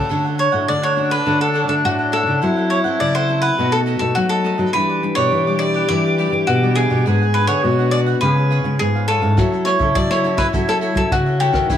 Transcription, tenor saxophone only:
0.10 D4
2.42 E4
3.58 F#4
4.74 G4
7.06 G#4
7.63 F#4
8.22 G#4
9.39 E4
11.12 F#4
11.70 E4

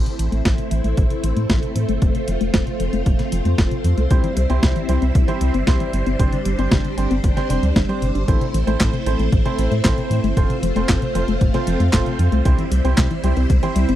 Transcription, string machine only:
Already playing: A3 C4 E4 C5
2.02 F4
4.10 G3 E4
6.19 D4
8.28 A3 C4 E4
10.37 A3 F4
12.45 G3 E4 C5

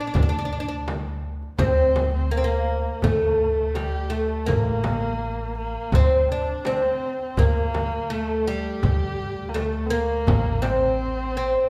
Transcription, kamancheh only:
Already playing: D4
1.59 C4
2.14 C4
2.31 A#3
2.45 A#3
3.02 A3
3.75 G4
4.12 A3
4.50 A#3
5.58 A#3
5.96 C4
6.31 D4
6.68 C4
6.74 D4
6.82 C4
7.22 C4
7.41 A#3
8.14 A3
8.48 G4
9.49 A#3
9.56 A3
9.86 C4
9.94 A#3
10.64 C4

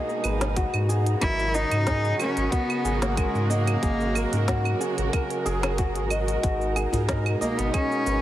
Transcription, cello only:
1.21 E4
1.54 D#4
2.19 C#4
2.51 B3
3.01 A#3
3.16 G#3
3.49 A#3
7.41 A#3
7.58 B3
7.73 C#4

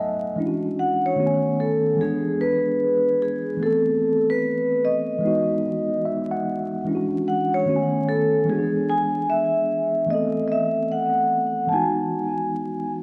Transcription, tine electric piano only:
Already playing: D#5 E5 F#5 G#5
0.36 E3 G#3 C#4 D4
0.40 E4
0.46 F#4
1.16 D#3 A3 B3 C#4
1.20 F#4
1.26 G#5
1.95 E3 G#3
1.99 B3 D4
2.03 G#4
3.57 E3 A3
3.61 B3 C4
3.66 A4
5.19 E3 G#3
5.23 B3 D#4
5.27 F#4
6.05 E5
6.31 F#5
6.84 E3 G#3 C#4 D4
6.89 E4
6.95 F#4
7.66 D#3 A3 B3 C#4
7.70 F#4
7.76 G#5
8.44 E3 G#3
8.48 B3 D4
8.52 F#4
8.59 G#4
10.06 E3 A3
10.10 B3 C4
10.14 A4
11.67 E3 G#3
11.71 B3 D#4
11.75 F#4

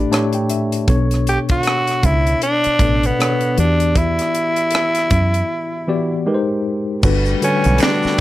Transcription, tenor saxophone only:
Already playing: D4
1.28 G4
1.51 F#4
2.05 E4
2.43 D4
3.06 B3
3.59 D4
3.97 E4
7.44 C#4
7.82 D4

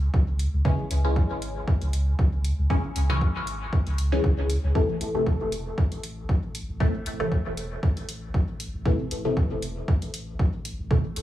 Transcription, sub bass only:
0.14 C#2
0.53 C#2
0.91 C#2
1.30 G#1
1.82 C#2
2.19 C#2
2.58 C#2
2.96 C#2
3.35 G#1
3.87 C#2
4.24 C#2
4.64 C#2
5.01 A1
5.40 E1
5.92 A1
6.29 A1
6.69 A1
7.06 A1
7.46 E1
7.97 A1
8.34 A1
8.74 A1
9.11 A1
9.51 E1
10.02 A1
10.39 A1
10.79 A1
11.16 A1

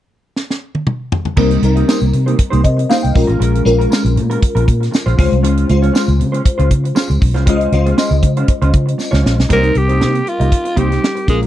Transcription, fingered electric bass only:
1.37 C2
1.62 C2
2.02 C2
2.14 C3
2.53 C2
2.64 C3
3.04 C2
3.16 A#1
3.29 A1
3.40 A#1
3.66 A#1
4.04 A#1
4.16 A#2
4.55 A#1
4.68 A#2
5.06 A#1
5.19 C#2
5.32 C2
5.44 C#2
5.70 C#2
6.08 C#2
6.20 C#3
6.59 C#2
6.71 C#3
7.10 C#2
7.22 B1
7.35 C2
7.47 C#2
7.72 C#2
8.11 C#2
8.23 C#3
8.62 C#2
8.74 C#3
9.13 C#2
9.25 A#1
9.39 B1
9.50 C2
9.75 C2
10.01 C3
10.40 C2
10.77 C2
11.28 A#1

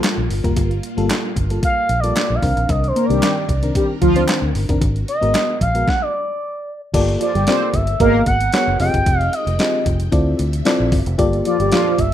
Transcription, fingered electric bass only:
0.17 A#1
0.30 G1
0.44 F1
0.57 G1
0.98 G1
1.36 G1
1.89 A#1
2.30 A#1
2.43 C2
2.57 A#1
2.69 C2
3.10 C2
3.49 C2
4.02 D2
4.42 D2
4.55 G1
4.69 F1
4.81 G#1
5.22 G#1
5.61 A#1
6.94 G1
7.35 G1
7.74 G1
8.00 G#1
8.27 G#1
8.67 F#1
8.80 F1
8.94 G1
9.07 F1
9.47 F1
9.86 F1
10.13 D2
10.39 D2
10.80 A#1
10.92 G1
11.06 F1
11.19 G1
11.60 G1
11.99 G1

